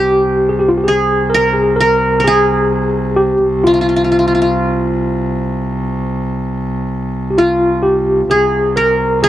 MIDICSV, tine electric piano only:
0, 0, Header, 1, 2, 480
1, 0, Start_track
1, 0, Tempo, 927357
1, 1899, Time_signature, 10, 3, 24, 8
1, 4807, End_track
2, 0, Start_track
2, 0, Title_t, "Tine electric piano"
2, 0, Program_c, 0, 4
2, 0, Note_on_c, 0, 67, 74
2, 255, Note_on_c, 0, 68, 69
2, 268, Note_off_c, 0, 67, 0
2, 307, Note_on_c, 0, 67, 64
2, 309, Note_off_c, 0, 68, 0
2, 356, Note_on_c, 0, 65, 63
2, 359, Note_off_c, 0, 67, 0
2, 401, Note_on_c, 0, 67, 68
2, 407, Note_off_c, 0, 65, 0
2, 434, Note_on_c, 0, 68, 74
2, 453, Note_off_c, 0, 67, 0
2, 671, Note_on_c, 0, 70, 77
2, 694, Note_off_c, 0, 68, 0
2, 793, Note_on_c, 0, 68, 76
2, 809, Note_off_c, 0, 70, 0
2, 912, Note_on_c, 0, 70, 83
2, 930, Note_off_c, 0, 68, 0
2, 1148, Note_off_c, 0, 70, 0
2, 1160, Note_on_c, 0, 68, 85
2, 1639, Note_on_c, 0, 67, 77
2, 1664, Note_off_c, 0, 68, 0
2, 1883, Note_on_c, 0, 65, 63
2, 1896, Note_off_c, 0, 67, 0
2, 2350, Note_off_c, 0, 65, 0
2, 3781, Note_on_c, 0, 67, 50
2, 3818, Note_off_c, 0, 67, 0
2, 3819, Note_on_c, 0, 65, 65
2, 4051, Note_on_c, 0, 67, 74
2, 4066, Note_off_c, 0, 65, 0
2, 4295, Note_on_c, 0, 68, 78
2, 4302, Note_off_c, 0, 67, 0
2, 4534, Note_on_c, 0, 70, 74
2, 4544, Note_off_c, 0, 68, 0
2, 4759, Note_off_c, 0, 70, 0
2, 4776, Note_on_c, 0, 68, 83
2, 4807, Note_off_c, 0, 68, 0
2, 4807, End_track
0, 0, End_of_file